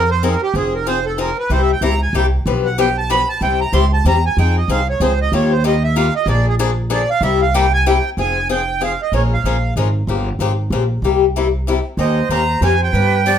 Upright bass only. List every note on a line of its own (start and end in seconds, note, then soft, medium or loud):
0.00 0.35 F2 loud
0.54 1.31 F1 medium
1.50 1.75 C2 medium
1.81 2.09 C#2 medium
2.13 2.40 C2 medium
2.46 3.22 B1 loud
3.41 3.66 C2 medium
3.73 4.00 C#2 medium
4.05 4.32 E2 medium
4.37 4.62 F2 medium
4.68 4.95 C2 medium
5.00 5.27 C#2 medium
5.32 6.08 D#2 medium
6.26 7.02 A#1 loud
7.21 7.97 C2 loud
8.17 8.93 F1 medium
9.12 9.38 A#1 medium
9.44 9.71 A#1 medium
9.76 10.03 G#1 medium
10.07 10.33 G1 medium
10.39 10.66 G#1 medium
10.70 10.98 A#1 medium
11.02 11.79 C2 medium
11.97 12.23 D#2 medium
12.29 12.57 D#2 medium
12.61 12.89 F2 medium
12.93 13.38 G2 medium